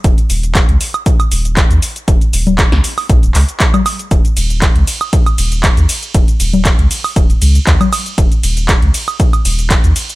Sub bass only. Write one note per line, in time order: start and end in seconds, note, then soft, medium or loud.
0.04 0.13 D#1 loud
0.30 0.61 D#1 loud
0.69 0.77 C#2 medium
1.32 1.63 D#1 medium
1.71 1.78 D#2 medium
2.08 2.17 D#1 medium
2.33 2.65 D#1 loud
2.72 2.80 C#2 medium
3.10 3.18 A#1 loud
3.23 3.31 D#1 medium
3.35 3.44 C#2 medium
4.11 4.20 D#1 loud
4.37 4.68 D#1 loud
4.76 4.83 C#2 medium
5.38 5.70 D#1 medium
5.77 5.85 D#2 loud
6.15 6.23 D#1 loud
6.40 6.71 D#1 loud
6.79 6.87 C#2 loud
7.16 7.33 D#1 medium
7.42 7.59 C#2 medium
7.67 7.76 D#2 medium
8.18 8.27 D#1 loud
8.44 8.75 D#1 loud
8.82 8.90 C#2 medium
9.45 9.76 D#1 medium
9.84 9.92 D#2 loud